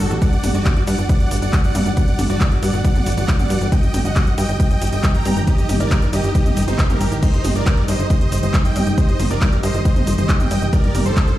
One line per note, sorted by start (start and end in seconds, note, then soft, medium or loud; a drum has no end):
0.00 0.18 A#2 medium
0.00 0.18 D3 medium
0.00 0.18 G3 medium
0.00 3.68 D4 medium
0.00 0.17 F#4 medium
0.00 0.18 G4 medium
0.00 0.17 A4 loud
0.11 0.19 A1 medium
0.11 closed hi-hat soft
0.11 shaker soft
0.22 3.69 A2 medium
0.22 3.69 D3 medium
0.22 3.69 F#3 medium
0.22 3.69 F#4 medium
0.22 0.49 D5 medium
0.22 0.49 F#5 loud
0.22 kick loud
0.22 closed hi-hat medium
0.22 ride medium
0.22 shaker soft
0.33 0.41 G1 medium
0.33 closed hi-hat soft
0.44 0.52 G1 medium
0.44 open hi-hat loud
0.44 mid tom medium
0.44 ride medium
0.44 shaker medium
0.55 0.63 G1 medium
0.55 0.82 F#4 medium
0.55 0.82 D5 medium
0.55 closed hi-hat medium
0.55 shaker soft
0.66 kick loud
0.66 clap loud
0.66 closed hi-hat medium
0.66 ride medium
0.66 shaker soft
0.76 0.85 G1 medium
0.76 closed hi-hat medium
0.87 0.96 G2 loud
0.87 1.06 D5 medium
0.87 1.06 F#5 medium
0.87 open hi-hat loud
0.87 ride medium
0.87 shaker medium
0.98 1.07 G1 medium
0.98 closed hi-hat soft
0.98 shaker soft
1.09 1.37 D5 medium
1.09 1.37 F#5 loud
1.09 kick loud
1.09 closed hi-hat medium
1.09 ride medium
1.09 shaker soft
1.20 1.29 G1 medium
1.20 closed hi-hat medium
1.31 1.40 G1 loud
1.31 open hi-hat loud
1.31 ride medium
1.31 shaker medium
1.37 closed hi-hat medium
1.42 1.51 G1 medium
1.42 1.61 D5 medium
1.42 1.61 F#5 medium
1.42 closed hi-hat medium
1.42 shaker soft
1.53 kick loud
1.53 clap loud
1.53 closed hi-hat medium
1.53 ride medium
1.53 shaker soft
1.64 1.73 G1 medium
1.64 1.92 D5 medium
1.64 1.92 F#5 loud
1.64 closed hi-hat soft
1.64 shaker soft
1.75 1.84 G2 loud
1.75 open hi-hat loud
1.75 mid tom medium
1.75 ride medium
1.75 shaker medium
1.86 1.94 G1 medium
1.86 closed hi-hat soft
1.86 shaker soft
1.97 2.25 D5 medium
1.97 2.25 F#5 loud
1.97 kick loud
1.97 closed hi-hat medium
1.97 ride medium
1.97 shaker soft
2.08 2.16 G1 medium
2.08 closed hi-hat medium
2.19 2.27 G1 medium
2.19 open hi-hat loud
2.19 mid tom medium
2.19 ride medium
2.19 shaker medium
2.30 2.38 G1 medium
2.30 2.58 F#4 medium
2.30 2.58 D5 loud
2.30 closed hi-hat medium
2.30 shaker soft
2.41 kick loud
2.41 clap loud
2.41 closed hi-hat medium
2.41 ride medium
2.41 shaker soft
2.52 2.60 G1 medium
2.52 closed hi-hat medium
2.63 2.71 G2 loud
2.63 2.81 D5 medium
2.63 2.81 F#5 medium
2.63 open hi-hat loud
2.63 ride medium
2.63 shaker medium
2.73 2.82 G1 medium
2.73 closed hi-hat soft
2.73 shaker soft
2.85 3.12 D5 medium
2.85 3.12 F#5 loud
2.85 kick loud
2.85 closed hi-hat medium
2.85 ride medium
2.85 shaker soft
2.95 3.04 G1 medium
2.95 closed hi-hat medium
2.95 mid tom medium
3.06 3.15 G1 loud
3.06 open hi-hat loud
3.06 ride medium
3.06 shaker medium
3.12 closed hi-hat medium
3.17 3.26 G1 medium
3.17 3.36 D5 medium
3.17 3.36 F#5 medium
3.17 closed hi-hat medium
3.17 shaker soft
3.28 kick loud
3.28 clap loud
3.28 closed hi-hat medium
3.28 ride medium
3.28 shaker soft
3.39 3.48 G1 medium
3.39 3.67 D5 medium
3.39 3.67 F#5 loud
3.39 closed hi-hat medium
3.39 mid tom medium
3.39 shaker soft
3.50 3.59 G2 loud
3.50 open hi-hat loud
3.50 ride medium
3.50 shaker medium
3.61 3.70 G1 medium
3.61 closed hi-hat medium
3.61 shaker soft
3.72 7.19 A#2 medium
3.72 7.19 D#3 medium
3.72 11.38 G3 medium
3.72 10.69 D#4 medium
3.72 11.38 G4 medium
3.72 4.00 D#5 medium
3.72 4.00 G5 loud
3.72 kick loud
3.72 closed hi-hat medium
3.72 ride medium
3.72 shaker soft
3.83 3.92 G1 medium
3.83 closed hi-hat medium
3.94 4.03 G1 medium
3.94 open hi-hat loud
3.94 mid tom medium
3.94 ride medium
3.94 shaker medium
4.05 4.14 G1 medium
4.05 4.33 D#5 medium
4.05 4.33 F#5 medium
4.05 closed hi-hat medium
4.05 shaker soft
4.16 kick loud
4.16 clap loud
4.16 closed hi-hat medium
4.16 ride medium
4.16 shaker soft
4.27 4.35 G1 medium
4.27 closed hi-hat medium
4.38 4.46 G2 loud
4.38 4.56 D#5 medium
4.38 4.56 G5 medium
4.38 open hi-hat loud
4.38 ride medium
4.38 shaker medium
4.49 4.57 G1 medium
4.49 closed hi-hat medium
4.49 shaker soft
4.60 4.88 D#5 medium
4.60 4.88 G5 loud
4.60 kick loud
4.60 closed hi-hat medium
4.60 ride medium
4.60 shaker soft
4.71 4.79 G1 medium
4.71 closed hi-hat medium
4.82 4.90 G1 loud
4.82 open hi-hat loud
4.82 ride medium
4.82 shaker medium
4.87 closed hi-hat medium
4.93 5.01 G1 medium
4.93 5.11 D#5 medium
4.93 5.11 G5 medium
4.93 closed hi-hat medium
4.93 shaker soft
5.03 kick loud
5.03 clap loud
5.03 closed hi-hat medium
5.03 ride medium
5.03 shaker soft
5.14 5.23 G1 medium
5.14 5.42 G5 medium
5.14 5.42 A#5 loud
5.14 closed hi-hat medium
5.14 shaker soft
5.25 5.34 G2 loud
5.25 open hi-hat medium
5.25 mid tom medium
5.25 ride medium
5.25 shaker medium
5.36 5.45 G1 medium
5.36 closed hi-hat medium
5.36 shaker soft
5.47 5.75 G4 medium
5.47 5.75 D#5 loud
5.47 kick loud
5.47 closed hi-hat medium
5.47 ride medium
5.47 shaker soft
5.58 5.67 G1 medium
5.58 closed hi-hat medium
5.58 shaker soft
5.69 5.78 G1 loud
5.69 open hi-hat loud
5.69 mid tom medium
5.69 ride medium
5.69 shaker medium
5.80 5.89 G1 medium
5.80 6.08 A#4 medium
5.80 6.08 D5 medium
5.80 closed hi-hat medium
5.80 shaker soft
5.91 kick loud
5.91 clap loud
5.91 closed hi-hat medium
5.91 ride medium
5.91 shaker soft
6.02 6.11 G1 medium
6.02 closed hi-hat medium
6.02 shaker soft
6.13 6.22 G2 medium
6.13 6.32 G4 medium
6.13 6.32 D#5 medium
6.13 open hi-hat loud
6.13 ride medium
6.13 shaker medium
6.24 6.33 G1 medium
6.24 closed hi-hat medium
6.24 shaker soft
6.35 6.63 G4 medium
6.35 6.63 D#5 loud
6.35 kick loud
6.35 closed hi-hat medium
6.35 ride medium
6.35 shaker soft
6.46 6.54 G1 medium
6.46 closed hi-hat medium
6.46 mid tom medium
6.46 shaker soft
6.57 6.65 G1 loud
6.57 open hi-hat loud
6.57 ride medium
6.57 shaker medium
6.62 closed hi-hat medium
6.68 6.76 G1 medium
6.68 6.86 D#4 medium
6.68 6.86 C5 medium
6.68 closed hi-hat medium
6.68 mid tom medium
6.68 shaker soft
6.79 kick loud
6.79 clap loud
6.79 closed hi-hat medium
6.79 ride medium
6.79 shaker soft
6.90 6.98 G1 medium
6.90 7.17 G4 medium
6.90 7.17 A#4 loud
6.90 closed hi-hat medium
6.90 mid tom medium
6.90 shaker soft
7.01 7.09 G1 loud
7.01 open hi-hat medium
7.01 ride medium
7.01 shaker medium
7.12 7.20 A1 medium
7.12 closed hi-hat medium
7.12 shaker soft
7.22 10.69 C3 medium
7.22 10.69 D#3 medium
7.22 7.50 C5 medium
7.22 7.50 D#5 loud
7.22 kick loud
7.22 closed hi-hat medium
7.22 crash medium
7.22 ride medium
7.22 shaker soft
7.34 7.42 G1 medium
7.34 closed hi-hat medium
7.45 7.53 G1 medium
7.45 open hi-hat loud
7.45 mid tom medium
7.45 ride medium
7.45 shaker medium
7.55 7.64 G1 medium
7.55 7.83 A#4 medium
7.55 7.83 D5 loud
7.55 closed hi-hat medium
7.55 shaker soft
7.66 kick loud
7.66 clap loud
7.66 closed hi-hat medium
7.66 ride medium
7.66 shaker soft
7.77 7.86 G1 medium
7.77 closed hi-hat medium
7.88 7.97 G2 loud
7.88 8.07 C5 medium
7.88 8.07 D#5 medium
7.88 open hi-hat loud
7.88 ride medium
7.88 shaker medium
7.99 8.08 G1 medium
7.99 closed hi-hat medium
7.99 shaker soft
8.10 8.38 C5 medium
8.10 8.38 D#5 medium
8.10 kick loud
8.10 closed hi-hat medium
8.10 ride medium
8.10 shaker soft
8.21 8.30 G1 medium
8.21 closed hi-hat medium
8.32 8.41 G1 loud
8.32 open hi-hat loud
8.32 ride medium
8.32 shaker medium
8.38 closed hi-hat medium
8.43 8.52 G1 medium
8.43 8.61 C5 medium
8.43 8.62 D#5 medium
8.43 closed hi-hat medium
8.43 shaker soft
8.54 kick loud
8.54 clap loud
8.54 closed hi-hat medium
8.54 ride medium
8.54 shaker soft
8.65 8.73 G1 medium
8.65 8.93 D#5 medium
8.65 8.93 G5 loud
8.65 closed hi-hat medium
8.65 shaker soft
8.76 8.84 G2 loud
8.76 open hi-hat loud
8.76 mid tom medium
8.76 ride medium
8.76 shaker medium
8.87 8.95 G1 medium
8.87 closed hi-hat medium
8.87 shaker soft
8.98 9.25 C5 medium
8.98 9.25 D#5 loud
8.98 kick loud
8.98 closed hi-hat medium
8.98 ride medium
8.98 shaker soft
9.09 9.17 G1 medium
9.09 closed hi-hat medium
9.20 9.28 G1 medium
9.20 open hi-hat loud
9.20 mid tom medium
9.20 ride medium
9.20 shaker medium
9.30 9.39 G1 loud
9.30 9.58 A#4 medium
9.30 9.58 D5 loud
9.30 closed hi-hat medium
9.30 shaker soft
9.41 kick loud
9.41 clap loud
9.41 closed hi-hat medium
9.41 ride medium
9.41 shaker soft
9.52 9.61 G1 medium
9.52 closed hi-hat medium
9.63 9.72 G2 loud
9.63 9.82 C5 medium
9.63 9.82 D#5 medium
9.63 open hi-hat loud
9.63 ride medium
9.63 shaker medium
9.74 9.83 G1 medium
9.74 closed hi-hat medium
9.74 shaker soft
9.85 10.13 C5 medium
9.85 10.13 D#5 loud
9.85 kick loud
9.85 closed hi-hat medium
9.85 ride medium
9.85 shaker soft
9.96 10.05 G1 medium
9.96 closed hi-hat medium
9.96 mid tom medium
10.07 10.16 G1 loud
10.07 open hi-hat loud
10.07 ride medium
10.07 shaker medium
10.13 closed hi-hat medium
10.18 10.27 G1 loud
10.18 10.37 C5 medium
10.18 10.37 D#5 medium
10.18 closed hi-hat medium
10.18 shaker soft
10.29 kick loud
10.29 clap loud
10.29 closed hi-hat medium
10.29 ride medium
10.29 shaker soft
10.40 10.49 G1 medium
10.40 10.68 D#5 medium
10.40 10.68 G5 loud
10.40 closed hi-hat medium
10.40 mid tom medium
10.40 shaker soft
10.51 10.60 G2 loud
10.51 open hi-hat loud
10.51 ride medium
10.51 shaker medium
10.62 10.70 G1 medium
10.62 closed hi-hat medium
10.62 shaker soft
10.73 11.38 A#2 medium
10.73 11.38 D3 medium
10.73 11.38 D4 medium
10.73 11.01 A#4 medium
10.73 11.01 D5 loud
10.73 kick loud
10.73 closed hi-hat medium
10.73 ride medium
10.73 shaker soft
10.84 10.92 G1 medium
10.84 closed hi-hat soft
10.95 11.03 G1 loud
10.95 open hi-hat loud
10.95 mid tom medium
10.95 ride medium
10.95 shaker medium
11.06 11.14 G1 medium
11.06 11.33 A4 medium
11.06 11.33 C5 loud
11.06 closed hi-hat medium
11.06 shaker soft
11.17 kick loud
11.17 clap loud
11.17 closed hi-hat medium
11.17 ride medium
11.17 shaker soft
11.28 11.36 G1 medium
11.28 closed hi-hat medium